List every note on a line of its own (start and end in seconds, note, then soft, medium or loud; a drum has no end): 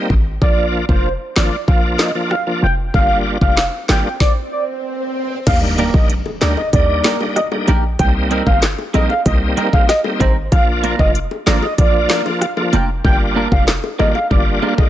0.00 0.14 G3 medium
0.00 0.14 A#3 medium
0.00 0.14 C4 medium
0.00 0.14 D#4 medium
0.10 0.38 G#1 medium
0.10 kick medium
0.41 0.84 A#1 loud
0.41 0.85 F3 medium
0.41 0.85 A#3 medium
0.41 0.85 D4 medium
0.41 0.85 F4 loud
0.41 0.66 D5 loud
0.41 kick loud
0.89 1.17 F1 medium
0.89 1.09 F3 medium
0.89 1.09 A#3 medium
0.89 1.09 D4 medium
0.89 1.09 F4 medium
0.89 1.13 C5 medium
0.89 kick medium
1.36 1.50 G#1 medium
1.36 1.56 F3 medium
1.36 1.56 A#3 medium
1.36 1.56 D4 medium
1.36 1.56 F4 medium
1.36 1.60 D5 medium
1.36 snare loud
1.36 clap medium
1.68 1.96 A#1 loud
1.68 2.11 F3 medium
1.68 2.11 A#3 medium
1.68 2.12 D4 medium
1.68 2.12 F4 loud
1.68 1.80 F5 medium
1.68 kick loud
1.99 2.12 D#5 medium
1.99 snare loud
1.99 clap medium
2.15 2.35 F3 medium
2.15 2.35 A#3 medium
2.15 2.35 D4 medium
2.15 2.35 F4 medium
2.31 2.43 F5 medium
2.31 cross-stick loud
2.47 2.67 F3 medium
2.47 2.67 A#3 medium
2.47 2.67 D4 medium
2.47 2.67 F4 medium
2.63 2.91 F1 medium
2.63 2.75 G5 medium
2.94 3.36 G1 medium
2.94 3.38 G3 medium
2.94 3.38 A#3 medium
2.94 3.38 D4 medium
2.94 3.38 F4 loud
2.94 3.18 F5 loud
2.94 kick loud
2.94 swell medium
3.41 3.70 F1 medium
3.41 3.61 G3 medium
3.41 3.61 A#3 medium
3.41 3.62 D4 medium
3.41 3.62 F4 medium
3.41 3.65 F5 medium
3.41 kick loud
3.57 snare loud
3.57 clap medium
3.89 4.03 G#1 medium
3.89 4.09 G3 medium
3.89 4.09 A#3 medium
3.89 4.09 D4 medium
3.89 4.09 F4 medium
3.89 4.13 G5 medium
3.89 snare loud
3.89 clap medium
4.20 4.33 D5 medium
4.20 kick loud
4.20 snare medium
4.52 4.64 D5 medium
5.47 5.89 D#2 loud
5.47 5.90 G3 medium
5.47 5.90 A#3 medium
5.47 5.90 D4 medium
5.47 5.91 D#4 loud
5.47 5.59 F5 loud
5.47 kick loud
5.47 closed hi-hat medium
5.47 crash medium
5.47 impact medium
5.78 5.93 A#3 medium
5.78 5.94 D4 medium
5.78 5.94 G4 medium
5.78 5.94 A#4 medium
5.78 closed hi-hat medium
5.94 6.22 A#1 loud
5.94 6.14 G3 medium
5.94 6.14 A#3 medium
5.94 6.14 D4 medium
5.94 6.14 D#4 medium
5.94 6.06 D#5 medium
5.94 kick loud
6.10 closed hi-hat medium
6.26 high bongo medium
6.41 6.56 D2 medium
6.41 6.61 G3 medium
6.41 6.56 A#3 medium
6.41 6.61 A#3 medium
6.41 6.57 D4 medium
6.41 6.62 D4 medium
6.41 6.62 D#4 medium
6.41 6.57 G4 medium
6.41 6.57 A#4 medium
6.41 6.53 D5 medium
6.41 snare loud
6.41 clap medium
6.41 closed hi-hat medium
6.41 high bongo medium
6.41 low bongo medium
6.57 6.69 D#5 medium
6.57 high bongo medium
6.73 7.01 D#2 loud
6.73 7.16 G3 medium
6.73 7.17 A#3 medium
6.73 7.17 D4 medium
6.73 7.17 D#4 loud
6.73 7.18 D5 loud
6.73 kick medium
6.73 closed hi-hat medium
7.04 7.20 A#3 medium
7.04 7.20 D4 medium
7.04 7.20 G4 medium
7.04 7.20 A#4 medium
7.04 snare loud
7.04 clap loud
7.04 closed hi-hat medium
7.04 high bongo medium
7.20 7.40 G3 medium
7.20 7.40 A#3 medium
7.20 7.40 D4 medium
7.20 7.41 D#4 medium
7.20 high bongo medium
7.36 7.48 D#5 medium
7.36 cross-stick medium
7.36 closed hi-hat medium
7.52 7.72 G3 medium
7.52 7.72 A#3 medium
7.52 7.72 D4 medium
7.52 7.72 D#4 medium
7.52 high bongo medium
7.67 7.96 A#1 loud
7.67 7.83 A#3 medium
7.67 7.83 D4 medium
7.67 7.83 G4 medium
7.67 7.83 A#4 medium
7.67 7.80 G5 medium
7.67 closed hi-hat medium
7.67 low bongo medium
7.99 8.42 C2 loud
7.99 8.43 G3 loud
7.99 8.43 A#3 medium
7.99 8.43 C4 medium
7.99 8.43 D#4 loud
7.99 8.11 G5 loud
7.99 kick loud
7.99 closed hi-hat medium
8.31 8.46 G3 medium
8.31 8.46 C4 medium
8.31 8.46 D#4 medium
8.31 8.47 A#4 medium
8.31 closed hi-hat medium
8.46 8.75 G1 medium
8.46 8.66 G3 medium
8.46 8.66 A#3 medium
8.46 8.67 C4 medium
8.46 8.67 D#4 medium
8.46 8.59 F5 medium
8.46 kick medium
8.62 snare loud
8.62 clap medium
8.62 closed hi-hat medium
8.79 high bongo medium
8.94 9.08 A#1 medium
8.94 9.09 G3 medium
8.94 9.14 G3 medium
8.94 9.14 A#3 medium
8.94 9.14 C4 medium
8.94 9.09 C4 medium
8.94 9.14 D#4 medium
8.94 9.10 D#4 medium
8.94 9.10 A#4 medium
8.94 9.06 D#5 medium
8.94 closed hi-hat medium
8.94 high bongo medium
8.94 low bongo medium
9.10 9.22 F5 medium
9.10 high bongo medium
9.25 9.54 C2 loud
9.25 9.69 G3 medium
9.25 9.69 A#3 medium
9.25 9.69 C4 medium
9.25 9.70 D#4 loud
9.25 9.38 D#5 medium
9.25 kick loud
9.25 closed hi-hat medium
9.57 9.72 G3 medium
9.57 9.72 C4 medium
9.57 9.73 D#4 medium
9.57 9.73 A#4 medium
9.57 closed hi-hat medium
9.57 high bongo medium
9.73 9.93 G3 medium
9.73 9.93 A#3 medium
9.73 9.93 C4 medium
9.73 9.93 D#4 medium
9.73 9.85 F5 medium
9.73 kick loud
9.73 high bongo medium
9.88 10.01 D#5 medium
9.88 cross-stick loud
9.88 snare medium
9.88 closed hi-hat medium
10.04 10.25 G3 medium
10.04 10.25 A#3 medium
10.04 10.25 C4 medium
10.04 10.25 D#4 medium
10.04 high bongo medium
10.20 10.49 G#1 loud
10.20 10.35 G3 medium
10.20 10.36 C4 medium
10.20 10.36 D#4 medium
10.20 10.36 A#4 medium
10.20 10.32 C5 medium
10.20 kick loud
10.20 closed hi-hat medium
10.20 low bongo medium
10.52 10.94 A#1 loud
10.52 10.95 F3 loud
10.52 10.96 A#3 medium
10.52 10.96 D4 medium
10.52 10.96 F4 loud
10.52 10.64 F5 loud
10.52 kick loud
10.52 closed hi-hat medium
10.83 10.98 A#3 medium
10.83 10.99 D4 medium
10.83 10.99 F4 loud
10.83 10.99 A#4 medium
10.83 closed hi-hat medium
10.99 11.28 F1 medium
10.99 11.19 F3 medium
10.99 11.19 A#3 medium
10.99 11.19 D4 medium
10.99 11.19 F4 medium
10.99 11.11 D#5 medium
10.99 kick loud
11.15 closed hi-hat medium
11.31 high bongo medium
11.46 11.61 G#1 medium
11.46 11.66 F3 medium
11.46 11.62 A#3 medium
11.46 11.67 A#3 medium
11.46 11.67 D4 medium
11.46 11.62 D4 medium
11.46 11.67 F4 medium
11.46 11.62 F4 medium
11.46 11.62 A#4 medium
11.46 11.59 D5 medium
11.46 snare loud
11.46 clap medium
11.46 closed hi-hat medium
11.46 high bongo medium
11.46 low bongo medium
11.62 11.74 D#5 medium
11.62 high bongo medium
11.78 12.07 A#1 loud
11.78 12.22 F3 loud
11.78 12.22 A#3 medium
11.78 12.22 D4 medium
11.78 12.22 F4 loud
11.78 12.23 D5 loud
11.78 kick medium
11.78 closed hi-hat medium
12.09 12.25 A#3 medium
12.09 12.25 D4 medium
12.09 12.25 F4 medium
12.09 12.25 A#4 medium
12.09 snare loud
12.09 clap loud
12.09 closed hi-hat medium
12.09 high bongo medium
12.25 12.45 F3 medium
12.25 12.46 A#3 medium
12.25 12.46 D4 medium
12.25 12.46 F4 medium
12.25 high bongo medium
12.41 12.53 F5 medium
12.41 cross-stick loud
12.41 closed hi-hat medium
12.57 12.77 F3 medium
12.57 12.77 A#3 medium
12.57 12.77 D4 medium
12.57 12.77 F4 medium
12.57 high bongo medium
12.73 13.01 F1 medium
12.73 12.88 A#3 medium
12.73 12.88 D4 medium
12.73 12.88 F4 loud
12.73 12.89 A#4 medium
12.73 12.85 G5 medium
12.73 closed hi-hat medium
12.73 low bongo medium
13.04 13.47 G1 loud
13.04 13.48 G3 loud
13.04 13.48 A#3 medium
13.04 13.48 D4 medium
13.04 13.48 F4 loud
13.04 13.17 G5 loud
13.04 kick loud
13.36 13.51 A#3 medium
13.36 13.51 D4 loud
13.36 13.52 F4 loud
13.36 13.52 A#4 loud
13.52 13.80 F1 loud
13.52 13.72 G3 medium
13.52 13.72 A#3 medium
13.52 13.72 D4 medium
13.52 13.72 F4 medium
13.52 13.64 F5 medium
13.52 kick medium
13.68 snare loud
13.68 clap medium
13.84 high bongo medium
13.99 14.13 G#1 medium
13.99 14.19 G3 medium
13.99 14.14 A#3 medium
13.99 14.19 A#3 medium
13.99 14.14 D4 medium
13.99 14.19 D4 medium
13.99 14.19 F4 medium
13.99 14.15 F4 medium
13.99 14.15 A#4 medium
13.99 14.11 D#5 medium
13.99 high bongo medium
13.99 low bongo medium
14.15 14.27 F5 medium
14.15 high bongo medium
14.30 14.59 G1 loud
14.30 14.74 G3 loud
14.30 14.74 A#3 medium
14.30 14.74 D4 medium
14.30 14.75 F4 loud
14.30 14.43 D5 medium
14.30 kick loud
14.62 14.77 A#3 medium
14.62 14.78 D4 medium
14.62 14.78 F4 medium
14.62 14.78 A#4 medium
14.62 high bongo medium
14.78 14.89 G3 medium
14.78 14.89 A#3 medium
14.78 14.89 D4 medium
14.78 14.89 F4 medium
14.78 14.89 D#5 medium
14.78 kick loud
14.78 high bongo medium